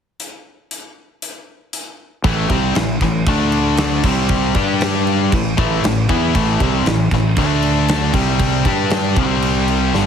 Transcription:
0.20 closed hi-hat
0.71 closed hi-hat
1.22 closed hi-hat
1.73 closed hi-hat
2.24 fingered electric bass A1, distorted electric guitar A2 E3 A3, kick, crash
2.49 fingered electric bass C2, distorted electric guitar C3 G3 C4, kick, crash
2.75 fingered electric bass A1, distorted electric guitar A2 E3, snare, crash
3.01 fingered electric bass A1, distorted electric guitar A2 E3, kick, snare, crash
3.27 fingered electric bass D2, distorted electric guitar D3 A3 D4, kick, crash
3.52 crash
3.77 snare, crash
4.03 fingered electric bass C2, distorted electric guitar C3 G3 C4, kick, crash
4.29 kick, crash
4.54 fingered electric bass G2, distorted electric guitar G3 D4 G4, kick, crash
4.81 snare, crash
5.07 crash
5.32 fingered electric bass A1, distorted electric guitar A2 E3, kick, crash
5.58 fingered electric bass A1, distorted electric guitar A2 E3 A3, kick, crash
5.83 fingered electric bass A1, distorted electric guitar A2 E3, snare, crash
6.09 fingered electric bass E2, distorted electric guitar E3 B3 E4, kick, crash
6.34 fingered electric bass A1, distorted electric guitar A2 E3 A3, kick, crash
6.60 fingered electric bass C2, distorted electric guitar C3 G3 C4, kick, crash
6.86 fingered electric bass A1, distorted electric guitar A2 E3, snare, crash
7.11 fingered electric bass A1, distorted electric guitar A2 E3, kick, snare, crash
7.36 fingered electric bass D2, distorted electric guitar D3 A3 D4, kick, crash
7.62 crash
7.88 snare, crash
8.14 fingered electric bass C2, distorted electric guitar C3 G3 C4, kick, crash
8.39 kick, crash
8.65 fingered electric bass G2, distorted electric guitar G3 D4 G4, kick, crash
8.90 snare, crash
9.16 fingered electric bass C2, distorted electric guitar C3 G3 C4, kick, crash
9.42 crash
9.68 crash
9.94 fingered electric bass G1, distorted electric guitar G2 D3 G3, snare

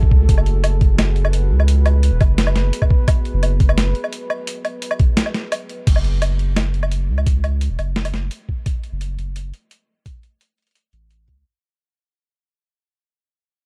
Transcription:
Already playing: sub bass A1, ambient pad F#4 G#4 A4
0.03 kick
0.11 sub bass C#2, kick
0.29 sub bass F#1, ambient pad B4, kick, closed hi-hat
0.38 low woodblock
0.46 closed hi-hat
0.64 closed hi-hat, low woodblock
0.81 kick, closed hi-hat
0.98 snare, closed hi-hat, low woodblock
1.16 closed hi-hat
1.25 low woodblock
1.33 closed hi-hat
1.51 sub bass C#2
1.60 low woodblock
1.68 closed hi-hat
1.86 closed hi-hat, low woodblock
2.03 closed hi-hat
2.12 sub bass E1
2.21 sub bass F#1, kick, closed hi-hat, low woodblock
2.38 snare, closed hi-hat
2.47 low woodblock
2.55 sub bass F#1, snare, closed hi-hat
2.73 closed hi-hat
2.82 kick, low woodblock
2.91 kick
3.08 kick, closed hi-hat, low woodblock
3.25 closed hi-hat
3.34 sub bass F#1
3.43 closed hi-hat, low woodblock
3.60 sub bass F#1, kick, closed hi-hat
3.69 low woodblock
3.78 snare, closed hi-hat
3.95 closed hi-hat
4.04 low woodblock
4.13 closed hi-hat
4.30 low woodblock
4.47 closed hi-hat
4.65 closed hi-hat, low woodblock
4.82 closed hi-hat
4.91 low woodblock
4.99 kick, closed hi-hat
5.17 snare, closed hi-hat
5.26 low woodblock
5.34 snare, closed hi-hat
5.52 closed hi-hat, low woodblock
5.69 closed hi-hat
5.87 sub bass F#1, kick, closed hi-hat, crash
5.96 low woodblock
6.04 closed hi-hat
6.22 closed hi-hat, low woodblock
6.39 closed hi-hat
6.56 snare, closed hi-hat, low woodblock
6.74 closed hi-hat
6.83 low woodblock
6.92 closed hi-hat
7.09 sub bass C#2
7.18 low woodblock
7.26 kick, closed hi-hat
7.44 closed hi-hat, low woodblock
7.61 closed hi-hat
7.70 sub bass E1
7.79 sub bass F#1, closed hi-hat, low woodblock
7.96 snare
8.05 closed hi-hat, low woodblock
8.13 sub bass F#1, snare, closed hi-hat
8.31 closed hi-hat
8.49 kick
8.66 kick, closed hi-hat
8.84 closed hi-hat
8.92 sub bass F#1
9.01 closed hi-hat
9.18 sub bass F#1, closed hi-hat
9.36 closed hi-hat
9.54 closed hi-hat
9.71 closed hi-hat
10.06 kick, closed hi-hat
10.23 closed hi-hat
10.41 closed hi-hat
10.58 closed hi-hat
10.62 closed hi-hat
10.67 closed hi-hat
10.71 closed hi-hat
10.75 closed hi-hat
10.93 sub bass A1, closed hi-hat
11.11 closed hi-hat
11.28 sub bass C#2, kick, closed hi-hat

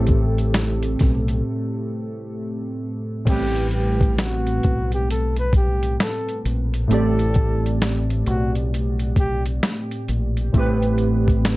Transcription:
Already playing: fingered electric bass A1, synth keys A2 A3 C4 G4 A4
0.07 kick, closed hi-hat
0.38 closed hi-hat
0.54 snare, closed hi-hat
0.83 closed hi-hat
0.99 fingered electric bass B1, kick, snare, closed hi-hat
1.28 closed hi-hat
3.25 fingered electric bass A1, synth keys A2 A3 C4, flugelhorn G4, kick, closed hi-hat, crash
3.30 synth keys G3 B4
3.56 closed hi-hat
3.71 flugelhorn G4, closed hi-hat
4.01 kick, closed hi-hat
4.19 flugelhorn F#4, snare, closed hi-hat
4.47 closed hi-hat
4.63 fingered electric bass B1, kick, closed hi-hat
4.92 flugelhorn G4, closed hi-hat
5.10 flugelhorn A4, closed hi-hat
5.36 flugelhorn B4, closed hi-hat
5.53 flugelhorn G4, kick, closed hi-hat
5.83 closed hi-hat
6.00 flugelhorn A4, snare, closed hi-hat
6.29 closed hi-hat
6.45 fingered electric bass A#1, closed hi-hat
6.74 closed hi-hat
6.88 fingered electric bass A1, synth keys A2 A3 C4, flugelhorn A4, closed hi-hat
6.92 synth keys G4 D5
7.19 closed hi-hat
7.34 kick, closed hi-hat
7.66 closed hi-hat
7.82 snare, closed hi-hat
8.10 closed hi-hat
8.26 fingered electric bass B1, flugelhorn F#4, closed hi-hat
8.55 closed hi-hat
8.74 closed hi-hat
8.99 closed hi-hat
9.16 flugelhorn G4, kick, closed hi-hat
9.46 closed hi-hat
9.63 snare, closed hi-hat
9.91 closed hi-hat
10.08 fingered electric bass A#1, closed hi-hat
10.37 closed hi-hat
10.53 fingered electric bass A1, synth keys A2 A3 C4, kick, closed hi-hat
10.58 synth keys G4 B4
10.82 closed hi-hat
10.98 closed hi-hat
11.28 kick, closed hi-hat
11.45 snare, closed hi-hat

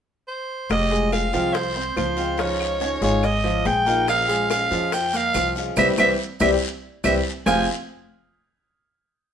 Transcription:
0.28 soprano saxophone C5
0.69 upright bass F1, steel-string acoustic guitar C3 F3 G#3 C4 F4, soprano saxophone D#5, high bongo, long guiro, claves
0.91 grand piano G#3 G#4, high bongo
1.11 steel-string acoustic guitar F3 G#3 C4 F4, soprano saxophone F5, high bongo, short guiro, claves
1.33 upright bass C2, grand piano F3 F4, steel-string acoustic guitar F3 G#3 C4 F4, high bongo, short guiro
1.54 soprano saxophone C5, muted steel-string acoustic guitar stroke, high bongo, long guiro
1.76 grand piano C4 C5, high bongo
1.96 upright bass C#2, grand piano F3 F4, soprano saxophone C5, high bongo, low bongo, short guiro, claves
2.17 steel-string acoustic guitar F3 G#3 C4 F4, short guiro
2.38 steel-string acoustic guitar C#3 F3 G#3 D#4 F4, grand piano F3 F4, soprano saxophone C#5, high bongo, long guiro
2.60 high bongo, claves
2.80 steel-string acoustic guitar F3 G#3 D#4 F4, grand piano C#4 C#5, high bongo, short guiro
3.01 upright bass G#1, steel-string acoustic guitar F3 G#3 D#4 F4, grand piano G#3 G#4, soprano saxophone C#5, high bongo, short guiro
3.23 soprano saxophone D#5, muted steel-string acoustic guitar stroke, high bongo, long guiro, claves
3.44 grand piano F3 F4, high bongo
3.65 upright bass A#1, grand piano G#3 G#4, soprano saxophone G5, high bongo, low bongo, short guiro
3.86 steel-string acoustic guitar F3 G#3 D#4 F4, grand piano A#3 A#4, short guiro
4.07 steel-string acoustic guitar F3 G#3 C#4 F4, soprano saxophone F5, high bongo, long guiro, claves, maracas
4.28 grand piano G#3 G#4, high bongo, maracas
4.50 steel-string acoustic guitar F3 G#3 C#4 F4, soprano saxophone F5, high bongo, short guiro, claves, maracas
4.71 upright bass F2, grand piano F3 F4, steel-string acoustic guitar G#3 C#4 F4, high bongo, short guiro, maracas
4.92 soprano saxophone G5, muted steel-string acoustic guitar stroke, high bongo, long guiro, maracas
5.13 grand piano A#3 A#4, soprano saxophone F5, high bongo, maracas
5.34 upright bass C2, grand piano F3 F4, high bongo, low bongo, short guiro, claves, maracas
5.55 steel-string acoustic guitar G#3 C#4 F4, short guiro, maracas
5.76 upright bass C2, steel-string acoustic guitar E3 G3 C4, grand piano G3 C4 E4, soprano saxophone E5, low bongo, long guiro, claves, maracas
5.97 upright bass C2, steel-string acoustic guitar E3 G3 C4, grand piano G3 C4 E4, soprano saxophone E5, low bongo, long guiro, claves, maracas
6.40 upright bass C2, steel-string acoustic guitar E3 G3 C4, grand piano G3 C4 E4, soprano saxophone E5, low bongo, long guiro, claves, maracas
7.04 upright bass C2, steel-string acoustic guitar E3 G3 C4, grand piano G3 C4 E4, soprano saxophone E5, low bongo, long guiro, claves, maracas
7.46 upright bass F1, steel-string acoustic guitar F2 C3 F3 G#3 C4 F4, grand piano F3 C4 F4 G#4 C5 F5, soprano saxophone G#5, low bongo, long guiro, claves, maracas

